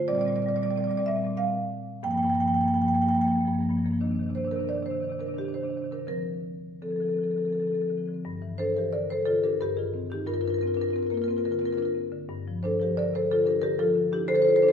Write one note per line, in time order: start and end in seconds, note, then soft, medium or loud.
0.08 0.18 A#2 medium
0.08 0.18 G3 medium
0.08 0.17 C4 soft
0.08 0.15 D5 medium
0.15 0.29 A#2 soft
0.15 0.27 G3 soft
0.15 0.25 C4 soft
0.15 0.21 D5 medium
0.21 0.28 D5 medium
0.25 0.38 A#2 medium
0.25 0.36 G3 soft
0.25 0.34 C4 soft
0.25 0.36 D5 medium
0.34 0.46 G3 soft
0.34 0.42 C4 soft
0.34 0.42 D5 medium
0.38 0.47 A#2 soft
0.38 0.49 D5 medium
0.42 0.54 G3 soft
0.42 0.50 C4 soft
0.47 0.58 A#2 medium
0.47 0.58 C4 soft
0.47 0.56 D5 medium
0.54 0.66 A#2 medium
0.54 0.62 G3 soft
0.54 0.67 C4 soft
0.54 0.63 D5 medium
0.62 0.77 A#2 medium
0.62 0.71 G3 soft
0.62 0.71 D5 medium
0.67 0.80 G3 soft
0.67 0.76 C4 soft
0.67 0.77 D5 medium
0.76 0.87 A#2 soft
0.76 0.83 C4 soft
0.76 0.84 D5 medium
0.80 0.90 G3 soft
0.80 0.91 C4 soft
0.80 0.91 D5 medium
0.87 0.98 A#2 medium
0.87 0.99 G3 soft
0.87 0.99 C4 soft
0.87 0.97 D5 medium
0.97 1.08 A#2 medium
0.97 1.08 G3 soft
0.97 1.08 C4 soft
0.97 1.02 D5 medium
1.06 1.18 A#2 medium
1.06 1.17 G3 soft
1.06 1.16 C4 soft
1.06 1.37 E5 medium
1.16 1.27 A#2 medium
1.16 1.25 G3 soft
1.16 1.24 C4 soft
1.24 1.35 A#2 medium
1.24 1.35 G3 soft
1.24 1.34 C4 soft
1.37 2.01 A#2 medium
1.37 2.01 G3 soft
1.37 2.01 C4 soft
1.37 2.01 F5 medium
2.03 2.14 G2 medium
2.03 2.12 F3 soft
2.03 2.12 A#3 medium
2.03 2.11 G5 medium
2.11 2.24 G2 soft
2.11 2.21 F3 soft
2.11 2.19 A#3 soft
2.11 2.17 G5 medium
2.17 2.27 A#3 soft
2.17 2.23 G5 medium
2.21 2.33 G2 medium
2.21 2.30 F3 soft
2.21 2.30 G5 medium
2.27 2.39 F3 soft
2.27 2.34 A#3 soft
2.27 2.35 G5 medium
2.33 2.44 G2 soft
2.33 2.41 A#3 soft
2.33 2.40 G5 medium
2.39 2.48 F3 soft
2.39 2.49 A#3 soft
2.39 2.47 G5 medium
2.44 2.53 G2 soft
2.44 2.58 F3 soft
2.44 2.54 G5 medium
2.49 2.64 G2 soft
2.49 2.57 A#3 soft
2.54 2.66 F3 soft
2.54 2.64 A#3 soft
2.54 2.61 G5 medium
2.61 2.74 G2 soft
2.61 2.71 A#3 soft
2.61 2.68 G5 medium
2.66 2.76 F3 soft
2.66 2.74 G5 medium
2.71 2.85 G2 soft
2.71 2.79 A#3 soft
2.71 2.81 G5 medium
2.76 2.85 F3 soft
2.76 2.87 A#3 soft
2.81 2.95 G2 soft
2.81 2.94 F3 soft
2.81 2.88 G5 medium
2.87 2.94 A#3 soft
2.87 2.95 G5 medium
2.94 3.06 G2 soft
2.94 3.02 F3 soft
2.94 3.02 A#3 soft
2.94 3.02 G5 medium
3.02 3.11 F3 soft
3.02 3.10 A#3 soft
3.02 3.08 G5 medium
3.06 3.16 G2 soft
3.06 3.18 A#3 soft
3.06 3.15 G5 medium
3.11 3.19 F3 soft
3.15 3.26 G2 soft
3.15 3.24 A#3 soft
3.15 3.21 G5 medium
3.19 3.26 F3 soft
3.19 3.28 G5 medium
3.24 3.37 G2 soft
3.24 3.35 F3 soft
3.24 3.32 A#3 soft
3.24 3.31 G5 medium
3.32 3.45 F3 soft
3.32 3.41 A#3 soft
3.37 3.48 G2 soft
3.37 3.47 A#3 soft
3.45 3.59 G2 soft
3.45 3.53 F3 soft
3.45 3.55 A#3 soft
3.53 3.61 F3 soft
3.53 3.63 A#3 soft
3.59 3.70 G2 soft
3.59 3.69 F3 soft
3.59 3.71 A#3 soft
3.69 3.80 G2 soft
3.69 3.77 F3 soft
3.69 3.78 A#3 soft
3.77 3.90 G2 soft
3.77 3.85 F3 soft
3.77 3.86 A#3 soft
3.85 3.93 F3 soft
3.85 3.93 A#3 soft
3.90 3.98 G2 soft
3.90 3.98 F3 soft
3.90 3.98 A#3 soft
4.01 4.11 C3 soft
4.01 4.10 D#3 soft
4.01 4.08 D4 soft
4.08 4.20 C3 soft
4.08 4.19 D#3 soft
4.08 4.15 D4 soft
4.15 4.23 D4 soft
4.19 4.29 C3 soft
4.19 4.26 D#3 soft
4.19 4.30 D4 soft
4.26 4.38 C3 soft
4.26 4.35 D#3 soft
4.26 4.37 D4 soft
4.35 4.47 C3 soft
4.35 4.44 D#3 soft
4.35 4.45 D4 soft
4.35 4.52 C5 medium
4.44 4.56 C3 soft
4.44 4.53 D#3 soft
4.44 4.52 D4 soft
4.51 4.61 D#3 soft
4.51 4.59 D4 soft
4.51 4.69 A#4 medium
4.56 4.64 C3 soft
4.56 4.67 D4 soft
4.61 4.73 C3 soft
4.61 4.70 D#3 soft
4.67 4.78 D#3 soft
4.67 4.75 D4 soft
4.67 4.86 D5 medium
4.73 4.82 C3 soft
4.73 4.83 D4 soft
4.78 4.86 D#3 soft
4.82 4.91 C3 soft
4.82 4.94 D#3 soft
4.82 4.90 D4 soft
4.82 5.18 C5 medium
4.90 5.00 C3 soft
4.90 5.02 D#3 soft
4.90 4.97 D4 soft
4.97 5.10 C3 soft
4.97 5.04 D4 soft
5.02 5.11 D#3 soft
5.02 5.12 D4 soft
5.10 5.20 C3 soft
5.10 5.20 D#3 soft
5.10 5.19 D4 soft
5.19 5.29 C3 soft
5.19 5.28 D#3 soft
5.19 5.27 D4 soft
5.19 5.37 A#4 soft
5.27 5.38 C3 soft
5.27 5.37 D#3 soft
5.27 5.34 D4 soft
5.34 5.46 C3 soft
5.34 5.44 D#3 soft
5.34 5.41 D4 soft
5.38 5.49 D4 soft
5.38 5.55 G4 medium
5.44 5.55 C3 soft
5.44 5.53 D#3 soft
5.49 5.56 D4 soft
5.53 5.64 C3 soft
5.53 5.61 D#3 soft
5.53 5.64 D4 soft
5.53 5.88 C5 medium
5.61 5.74 C3 soft
5.61 5.68 D#3 soft
5.61 5.70 D4 soft
5.68 5.76 D#3 soft
5.68 5.77 D4 soft
5.74 5.82 C3 soft
5.74 5.84 D#3 soft
5.74 5.85 D4 soft
5.82 5.92 C3 soft
5.82 5.93 D#3 soft
5.82 5.92 D4 soft
5.92 6.04 C3 soft
5.92 6.04 D#3 soft
5.92 5.99 D4 soft
5.92 6.07 A#4 soft
5.99 6.03 D4 soft
6.07 6.78 D3 soft
6.07 6.78 F3 soft
6.07 6.78 C4 soft
6.07 6.78 A#4 medium
6.82 6.91 D3 soft
6.82 6.92 F3 soft
6.82 6.90 C4 soft
6.82 6.89 A4 soft
6.89 7.00 D3 soft
6.89 7.02 F3 soft
6.89 6.98 C4 soft
6.89 6.96 A4 soft
6.96 7.06 C4 soft
6.96 7.03 A4 soft
7.00 7.08 D3 soft
7.00 7.11 F3 soft
7.00 7.09 A4 soft
7.06 7.19 D3 soft
7.06 7.14 C4 soft
7.06 7.17 A4 soft
7.11 7.21 F3 soft
7.11 7.23 C4 soft
7.17 7.27 D3 soft
7.17 7.24 A4 soft
7.21 7.31 F3 soft
7.21 7.31 C4 soft
7.21 7.31 A4 soft
7.27 7.36 D3 soft
7.27 7.40 F3 soft
7.27 7.38 A4 soft
7.31 7.40 C4 soft
7.36 7.45 D3 soft
7.36 7.49 F3 soft
7.36 7.48 C4 soft
7.36 7.45 A4 soft
7.45 7.55 D3 soft
7.45 7.56 C4 soft
7.45 7.52 A4 soft
7.49 7.59 F3 soft
7.49 7.60 A4 soft
7.55 7.63 D3 soft
7.55 7.64 C4 soft
7.59 7.72 D3 soft
7.59 7.68 F3 soft
7.59 7.67 A4 soft
7.64 7.78 F3 soft
7.64 7.73 C4 soft
7.64 7.74 A4 soft
7.72 7.82 D3 soft
7.72 7.80 C4 soft
7.72 7.82 A4 soft
7.78 7.90 D3 soft
7.78 7.88 F3 soft
7.78 7.89 C4 soft
7.78 7.85 A4 soft
7.88 7.99 D3 soft
7.88 7.98 F3 soft
7.88 7.97 C4 soft
7.97 8.09 D3 soft
7.97 8.08 F3 soft
7.97 8.06 C4 soft
8.06 8.20 D3 soft
8.06 8.20 F3 soft
8.06 8.14 C4 soft
8.14 8.20 C4 soft
8.25 9.56 G2 medium
8.42 8.68 E3 soft
8.58 8.85 D4 soft
8.58 8.74 A4 medium
8.58 8.75 C5 medium
8.76 9.03 E3 soft
8.76 8.92 G4 soft
8.76 8.92 A#4 medium
8.93 9.19 D3 soft
8.93 9.08 A#4 soft
8.93 9.09 D5 medium
9.10 9.26 C3 soft
9.10 9.24 A4 soft
9.10 9.26 C5 medium
9.26 9.53 D3 soft
9.26 9.42 F4 soft
9.26 9.42 A4 medium
9.44 9.60 D4 soft
9.44 9.59 G4 soft
9.44 9.60 A#4 medium
9.61 10.25 G2 medium
9.61 9.76 G4 medium
9.61 9.77 A#4 medium
9.77 10.03 D#3 soft
9.77 10.08 F4 soft
9.77 10.08 G#4 medium
9.94 10.20 C4 soft
10.10 10.26 D#3 soft
10.10 10.27 D#4 soft
10.10 10.27 G4 medium
10.26 12.24 G2 medium
10.26 10.34 F4 soft
10.26 10.34 A#4 medium
10.34 10.41 F4 soft
10.34 10.41 A#4 medium
10.41 10.71 D4 soft
10.41 10.50 F4 soft
10.41 10.48 A#4 medium
10.48 10.58 F4 soft
10.48 10.54 A#4 medium
10.54 10.61 A#4 medium
10.58 10.88 C4 soft
10.58 10.67 F4 soft
10.58 10.68 A#4 medium
10.67 10.75 F4 soft
10.67 10.74 A#4 medium
10.74 11.04 D4 soft
10.74 10.83 F4 soft
10.74 10.81 A#4 medium
10.81 10.91 F4 soft
10.81 10.89 A#4 medium
10.89 10.98 F4 soft
10.89 10.96 A#4 medium
10.93 11.20 C4 soft
10.93 11.03 A#4 medium
10.98 11.07 F4 soft
11.03 11.14 F4 soft
11.03 11.10 A#4 medium
11.10 11.27 A#3 soft
11.10 11.22 F4 soft
11.10 11.17 A#4 medium
11.17 11.24 A#4 medium
11.22 11.29 F4 soft
11.22 11.31 A#4 medium
11.28 11.54 C4 soft
11.28 11.37 F4 soft
11.28 11.38 A#4 medium
11.37 11.44 F4 soft
11.37 11.45 A#4 medium
11.44 11.72 D3 soft
11.44 11.51 F4 soft
11.44 11.52 A#4 medium
11.51 11.59 F4 soft
11.51 11.59 A#4 medium
11.59 11.88 C4 soft
11.59 11.67 F4 soft
11.59 11.66 A#4 medium
11.66 11.74 F4 soft
11.66 11.72 A#4 medium
11.72 11.83 F4 soft
11.72 11.78 A#4 medium
11.77 12.04 D4 soft
11.77 11.85 A#4 medium
11.83 11.90 F4 soft
11.83 11.91 A#4 medium
11.95 12.21 C4 soft
12.12 12.28 D3 soft
12.29 14.28 G2 medium
12.48 12.73 F3 soft
12.63 12.90 D4 soft
12.63 12.79 A4 medium
12.63 12.79 C5 medium
12.80 13.06 F3 soft
12.80 12.96 G4 soft
12.80 12.97 A#4 medium
12.97 13.23 D3 soft
12.97 13.13 A#4 medium
12.97 13.13 D5 medium
13.14 13.29 C3 soft
13.14 13.30 A4 medium
13.14 13.30 C5 medium
13.31 13.57 D3 soft
13.31 13.46 F4 medium
13.31 13.47 A4 medium
13.46 13.73 D4 soft
13.46 13.62 G4 soft
13.46 13.60 A#4 medium
13.62 13.89 D3 soft
13.62 13.78 G4 medium
13.62 13.79 A#4 medium
13.79 14.07 F3 medium
13.79 14.12 F4 medium
13.79 14.13 A4 medium
13.95 14.24 D3 soft
14.12 14.30 D4 soft
14.12 14.30 E4 soft
14.12 14.31 G4 medium
14.28 14.72 D3 medium
14.28 14.35 A4 medium
14.28 14.36 C5 medium
14.35 14.42 A4 medium
14.35 14.42 C5 medium
14.42 14.72 F4 medium
14.42 14.50 A4 medium
14.42 14.48 C5 medium
14.48 14.56 A4 soft
14.48 14.56 C5 medium
14.56 14.63 A4 medium
14.56 14.62 C5 medium
14.62 14.72 D4 medium
14.62 14.72 A4 soft
14.62 14.69 C5 medium
14.69 14.72 C5 medium